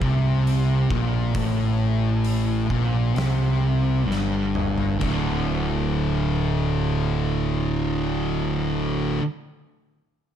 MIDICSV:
0, 0, Header, 1, 4, 480
1, 0, Start_track
1, 0, Tempo, 902256
1, 718, Time_signature, 4, 2, 24, 8
1, 2169, Tempo, 937500
1, 5383, End_track
2, 0, Start_track
2, 0, Title_t, "Distorted electric guitar"
2, 0, Program_c, 0, 30
2, 10, Note_on_c, 0, 48, 102
2, 474, Note_off_c, 0, 48, 0
2, 483, Note_on_c, 0, 46, 85
2, 712, Note_off_c, 0, 46, 0
2, 719, Note_on_c, 0, 45, 106
2, 1431, Note_off_c, 0, 45, 0
2, 1439, Note_on_c, 0, 46, 100
2, 1688, Note_off_c, 0, 46, 0
2, 1688, Note_on_c, 0, 48, 110
2, 2170, Note_off_c, 0, 48, 0
2, 2170, Note_on_c, 0, 43, 91
2, 2633, Note_off_c, 0, 43, 0
2, 2635, Note_on_c, 0, 38, 86
2, 2644, Note_on_c, 0, 45, 106
2, 2654, Note_on_c, 0, 50, 100
2, 4784, Note_off_c, 0, 38, 0
2, 4793, Note_off_c, 0, 45, 0
2, 4803, Note_off_c, 0, 50, 0
2, 5383, End_track
3, 0, Start_track
3, 0, Title_t, "Fingered electric bass"
3, 0, Program_c, 1, 33
3, 8, Note_on_c, 1, 36, 92
3, 459, Note_off_c, 1, 36, 0
3, 484, Note_on_c, 1, 34, 81
3, 704, Note_off_c, 1, 34, 0
3, 717, Note_on_c, 1, 33, 91
3, 1416, Note_off_c, 1, 33, 0
3, 1438, Note_on_c, 1, 34, 96
3, 1663, Note_off_c, 1, 34, 0
3, 1686, Note_on_c, 1, 36, 87
3, 2151, Note_off_c, 1, 36, 0
3, 2166, Note_on_c, 1, 31, 92
3, 2624, Note_off_c, 1, 31, 0
3, 2650, Note_on_c, 1, 26, 96
3, 4778, Note_off_c, 1, 26, 0
3, 5383, End_track
4, 0, Start_track
4, 0, Title_t, "Drums"
4, 9, Note_on_c, 9, 36, 103
4, 62, Note_off_c, 9, 36, 0
4, 250, Note_on_c, 9, 46, 54
4, 303, Note_off_c, 9, 46, 0
4, 481, Note_on_c, 9, 36, 112
4, 535, Note_off_c, 9, 36, 0
4, 716, Note_on_c, 9, 46, 62
4, 717, Note_on_c, 9, 36, 108
4, 769, Note_off_c, 9, 46, 0
4, 771, Note_off_c, 9, 36, 0
4, 1194, Note_on_c, 9, 46, 58
4, 1247, Note_off_c, 9, 46, 0
4, 1437, Note_on_c, 9, 36, 88
4, 1490, Note_off_c, 9, 36, 0
4, 1682, Note_on_c, 9, 46, 53
4, 1694, Note_on_c, 9, 38, 109
4, 1735, Note_off_c, 9, 46, 0
4, 1747, Note_off_c, 9, 38, 0
4, 2185, Note_on_c, 9, 38, 53
4, 2236, Note_off_c, 9, 38, 0
4, 2411, Note_on_c, 9, 45, 82
4, 2463, Note_off_c, 9, 45, 0
4, 2528, Note_on_c, 9, 43, 78
4, 2579, Note_off_c, 9, 43, 0
4, 2646, Note_on_c, 9, 49, 92
4, 2648, Note_on_c, 9, 36, 106
4, 2697, Note_off_c, 9, 49, 0
4, 2699, Note_off_c, 9, 36, 0
4, 5383, End_track
0, 0, End_of_file